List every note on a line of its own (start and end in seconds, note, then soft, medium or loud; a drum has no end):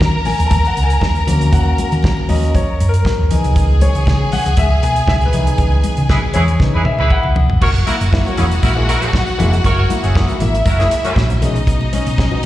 0.00 0.21 D#3 medium
0.00 3.01 A#4 medium
0.00 3.01 A#5 loud
0.00 kick loud
0.00 snare loud
0.25 0.48 G#5 medium
0.25 open hi-hat medium
0.25 high conga medium
0.25 low conga medium
0.39 0.49 D#2 medium
0.39 closed hi-hat medium
0.47 0.51 A5 medium
0.47 0.68 A#5 loud
0.51 0.71 D#2 loud
0.51 kick loud
0.51 closed hi-hat medium
0.51 muted conga soft
0.51 high conga medium
0.51 low conga medium
0.65 0.85 F#5 medium
0.65 closed hi-hat soft
0.77 0.97 C#2 medium
0.77 closed hi-hat medium
0.83 1.01 G#5 medium
0.90 closed hi-hat medium
1.00 1.22 D#2 loud
1.00 1.25 A#5 medium
1.00 kick medium
1.00 snare loud
1.00 muted conga soft
1.15 closed hi-hat soft
1.15 muted conga soft
1.27 1.47 D2 medium
1.27 2.27 F#3 medium
1.27 2.28 A#3 medium
1.27 2.28 C#4 medium
1.27 closed hi-hat medium
1.27 low conga medium
1.41 closed hi-hat soft
1.52 1.73 D#2 loud
1.52 2.31 F#5 medium
1.52 kick loud
1.52 closed hi-hat medium
1.66 muted conga soft
1.78 closed hi-hat medium
1.78 high conga medium
1.92 2.12 D#3 medium
1.92 closed hi-hat soft
2.03 kick loud
2.03 snare loud
2.03 muted conga soft
2.17 muted conga soft
2.29 2.60 D#2 medium
2.29 2.52 F#3 soft
2.29 2.52 A#3 soft
2.29 2.52 C#4 medium
2.29 2.53 D#5 medium
2.29 open hi-hat medium
2.29 high conga medium
2.29 low conga medium
2.44 closed hi-hat soft
2.55 2.89 C#5 medium
2.55 kick loud
2.55 closed hi-hat medium
2.55 muted conga soft
2.55 high conga medium
2.55 low conga medium
2.80 3.00 F#2 loud
2.80 closed hi-hat medium
2.89 3.61 A#4 loud
2.94 closed hi-hat medium
3.05 kick loud
3.05 snare loud
3.19 3.31 D#2 medium
3.30 3.41 C#2 loud
3.30 5.30 E3 soft
3.30 5.30 B3 soft
3.30 5.30 D#4 medium
3.30 7.07 G#4 medium
3.30 7.07 G#5 medium
3.30 closed hi-hat medium
3.30 low conga medium
3.44 3.54 C2 medium
3.44 closed hi-hat soft
3.56 3.86 C#2 loud
3.56 kick medium
3.56 closed hi-hat medium
3.56 muted conga soft
3.81 4.29 C#5 loud
3.81 closed hi-hat medium
3.81 high conga medium
3.95 4.05 C#2 medium
3.95 closed hi-hat soft
4.06 4.27 C#3 medium
4.06 kick loud
4.06 snare loud
4.06 muted conga soft
4.32 4.58 F#5 medium
4.32 open hi-hat medium
4.32 high conga medium
4.32 low conga medium
4.46 4.55 C#2 medium
4.46 closed hi-hat medium
4.57 4.77 C#2 loud
4.57 4.81 E5 loud
4.57 kick loud
4.57 closed hi-hat medium
4.57 muted conga soft
4.57 high conga medium
4.57 low conga medium
4.70 muted conga soft
4.83 5.03 B1 loud
4.83 5.06 G#5 loud
4.83 closed hi-hat medium
4.96 closed hi-hat medium
5.08 5.28 C#2 loud
5.08 5.13 E5 loud
5.08 kick loud
5.08 snare loud
5.21 closed hi-hat soft
5.21 muted conga soft
5.25 5.97 B4 medium
5.33 5.54 C2 medium
5.33 6.58 E3 medium
5.33 6.59 B3 medium
5.33 6.59 D#4 medium
5.33 closed hi-hat medium
5.33 low conga medium
5.47 closed hi-hat soft
5.58 5.79 C#2 loud
5.58 kick medium
5.58 closed hi-hat medium
5.72 muted conga soft
5.84 closed hi-hat medium
5.84 high conga medium
5.97 6.18 C#3 medium
5.97 closed hi-hat soft
6.09 6.18 E4 medium
6.09 6.18 G#4 medium
6.09 6.18 B4 loud
6.09 kick loud
6.09 snare loud
6.34 6.55 E2 medium
6.34 6.43 E4 medium
6.34 6.43 G#4 medium
6.34 6.44 B4 medium
6.34 6.87 C#5 medium
6.34 closed hi-hat medium
6.34 high conga medium
6.34 low conga medium
6.48 closed hi-hat soft
6.60 6.71 C#3 loud
6.60 6.83 E3 soft
6.60 6.83 B3 soft
6.60 6.83 D#4 medium
6.60 kick loud
6.60 snare medium
6.60 muted conga soft
6.60 high conga medium
6.60 low conga medium
6.74 6.83 E2 medium
6.74 6.81 E4 medium
6.74 6.81 G#4 medium
6.74 6.81 B4 medium
6.85 7.09 E5 medium
6.85 high tom medium
6.99 7.09 C#2 medium
6.99 7.34 E4 loud
6.99 7.35 G#4 loud
6.99 7.35 B4 loud
6.99 high tom medium
7.10 7.58 F#5 medium
7.10 kick loud
7.23 7.34 C#2 loud
7.23 muted conga soft
7.36 7.47 B1 loud
7.36 floor tom loud
7.36 low conga medium
7.50 7.59 F1 medium
7.50 floor tom medium
7.61 7.82 F#1 loud
7.61 7.76 F#3 medium
7.61 7.70 F#4 loud
7.61 10.36 F#4 medium
7.61 7.70 A#4 loud
7.61 7.70 C#5 loud
7.61 10.36 F#5 medium
7.61 kick loud
7.61 crash loud
7.75 closed hi-hat soft
7.87 8.01 A#3 medium
7.87 7.95 E4 medium
7.87 8.01 E4 medium
7.87 7.95 F#4 loud
7.87 7.95 A#4 loud
7.87 closed hi-hat medium
7.87 high conga medium
8.01 8.21 F#1 medium
8.01 closed hi-hat soft
8.12 8.26 A#3 medium
8.12 8.26 E4 medium
8.12 kick loud
8.12 snare loud
8.25 8.38 F#3 medium
8.25 8.35 F#4 medium
8.25 8.35 A#4 medium
8.25 8.35 C#5 medium
8.25 closed hi-hat soft
8.25 muted conga soft
8.25 high conga medium
8.37 8.58 E1 medium
8.37 8.51 A#3 medium
8.37 8.46 C#4 medium
8.37 8.46 E4 medium
8.37 8.52 E4 medium
8.37 8.46 G#4 medium
8.37 closed hi-hat medium
8.37 high conga medium
8.37 low conga medium
8.51 closed hi-hat soft
8.63 8.83 A#1 loud
8.63 8.71 E4 medium
8.63 8.71 F#4 medium
8.63 8.71 A#4 medium
8.63 kick loud
8.63 closed hi-hat medium
8.63 muted conga soft
8.63 high conga medium
8.76 8.89 G#3 medium
8.76 8.89 A#3 medium
8.76 8.89 E4 medium
8.76 muted conga soft
8.88 9.09 E4 medium
8.88 9.09 F#4 loud
8.88 9.09 A#4 loud
8.88 closed hi-hat medium
9.01 9.14 F#3 medium
9.01 closed hi-hat medium
9.13 kick loud
9.13 snare loud
9.13 muted conga soft
9.27 closed hi-hat soft
9.27 muted conga soft
9.38 9.59 F1 medium
9.38 9.52 G#3 medium
9.38 9.53 A#3 medium
9.38 9.53 E4 loud
9.38 closed hi-hat medium
9.38 low conga medium
9.53 closed hi-hat soft
9.64 9.84 F#1 loud
9.64 9.78 F#3 medium
9.64 9.85 F#4 loud
9.64 9.85 A#4 loud
9.64 9.85 C#5 loud
9.64 kick medium
9.64 closed hi-hat medium
9.64 muted conga soft
9.78 muted conga soft
9.89 10.03 A#3 medium
9.89 10.03 E4 medium
9.89 closed hi-hat medium
9.89 high conga medium
10.03 10.23 F#1 medium
10.03 10.38 C#4 medium
10.03 10.38 E4 medium
10.03 10.38 G#4 medium
10.03 closed hi-hat soft
10.15 10.29 A#3 medium
10.15 10.29 E4 medium
10.15 kick loud
10.15 snare loud
10.28 10.41 F#3 medium
10.28 closed hi-hat soft
10.28 muted conga soft
10.28 high conga medium
10.40 10.60 G#1 medium
10.40 10.54 A#3 medium
10.40 11.39 E4 medium
10.40 10.54 E4 medium
10.40 11.39 E5 loud
10.40 closed hi-hat medium
10.40 high conga medium
10.40 low conga medium
10.55 closed hi-hat soft
10.66 10.86 F#1 loud
10.66 10.76 E4 medium
10.66 10.76 F#4 medium
10.66 10.76 A#4 loud
10.66 kick loud
10.66 closed hi-hat medium
10.66 high conga medium
10.79 10.91 G#3 medium
10.79 10.91 A#3 medium
10.79 10.86 C#4 medium
10.79 10.86 E4 medium
10.79 10.92 E4 medium
10.79 10.86 G#4 medium
10.79 snare soft
10.79 closed hi-hat soft
10.91 closed hi-hat medium
11.04 11.17 F#3 medium
11.04 11.14 A#3 loud
11.04 11.14 C#4 medium
11.04 11.14 F#4 loud
11.04 closed hi-hat soft
11.16 11.36 A#1 loud
11.16 11.22 A#3 soft
11.16 11.22 E4 soft
11.16 kick loud
11.16 snare loud
11.30 11.42 F#3 medium
11.30 closed hi-hat soft
11.30 muted conga soft
11.42 11.82 B1 medium
11.42 11.55 G#3 medium
11.42 11.55 C#4 medium
11.42 11.56 D#4 medium
11.42 12.46 D#4 medium
11.42 12.46 D#5 medium
11.42 closed hi-hat medium
11.42 low conga medium
11.56 closed hi-hat soft
11.67 11.81 B2 medium
11.67 11.81 F#3 medium
11.67 kick loud
11.67 closed hi-hat medium
11.67 muted conga soft
11.81 muted conga soft
11.93 12.06 C#4 medium
11.93 12.07 D#4 medium
11.93 closed hi-hat medium
11.93 high conga medium
12.07 12.26 B1 loud
12.07 closed hi-hat soft
12.18 12.32 C#4 medium
12.18 12.32 D#4 medium
12.18 kick loud
12.18 snare loud
12.31 12.43 B2 medium
12.31 12.44 F#3 medium
12.31 muted conga soft
12.31 high conga medium